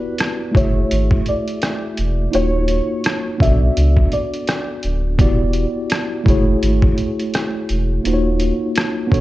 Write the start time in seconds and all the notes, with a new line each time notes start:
Already playing: B3 E4 F#4 G4 B4 D5
0.18 cross-stick, closed hi-hat
0.51 A3 E4 F#4, kick
0.55 F#1 G#4 C#5 E5, closed hi-hat
0.91 G#1, closed hi-hat
1.11 kick
1.26 D5, closed hi-hat
1.48 closed hi-hat
1.62 cross-stick, closed hi-hat
1.97 E1, closed hi-hat
2.31 D#1 A#3 D#4 F4 F#4 C#5, closed hi-hat
2.68 closed hi-hat
3.04 cross-stick, closed hi-hat
3.38 B1 B3 D4 F#4 E5, kick
3.43 A4 D5, closed hi-hat
3.77 C#2, closed hi-hat
3.97 kick
4.12 D5, closed hi-hat
4.34 closed hi-hat
4.47 cross-stick, closed hi-hat
4.83 D1, closed hi-hat
5.18 E1 B3 E4 F#4 G4 D5, kick, closed hi-hat
5.53 closed hi-hat
5.90 cross-stick, closed hi-hat
6.24 F#1 A3 E4 F#4, kick
6.28 G#4 C#5, closed hi-hat
6.63 G#1, closed hi-hat
6.82 kick
6.98 closed hi-hat
7.19 closed hi-hat
7.34 cross-stick, closed hi-hat
7.69 E1, closed hi-hat
8.04 D#1 A#3 D#4 F4 F#4 C5, closed hi-hat
8.14 C#5
8.40 closed hi-hat
8.76 cross-stick, closed hi-hat
9.07 B3 D4 F#4
9.12 B1 A4 C#5, kick, closed hi-hat